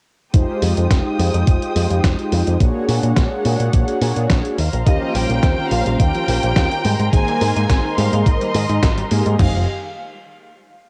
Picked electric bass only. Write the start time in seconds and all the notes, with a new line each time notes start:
0.34 F1
0.62 F2
0.77 F2
0.90 F1
1.19 F2
1.34 F2
1.47 F1
1.76 F2
1.90 F2
2.04 F1
2.32 F2
2.47 F2
2.60 A#1
2.89 A#2
3.03 A#2
3.17 A#1
3.45 A#2
3.60 A#2
3.73 A#1
4.02 A#2
4.17 A#2
4.30 A#1
4.58 D#2
4.73 A#1
4.87 D#2
5.15 A#1
5.29 A#1
5.43 D#2
5.71 A#1
5.86 A#1
6.00 D#2
6.28 A#1
6.43 A#1
6.56 D#2
6.85 G#2
6.99 G#2
7.13 G#1
7.41 G#2
7.56 G#2
7.69 G#1
7.98 G#2
8.13 G#2
8.26 G#1
8.55 G#2
8.69 G#2
8.83 G#1
9.11 G#2
9.26 G#2
9.39 F1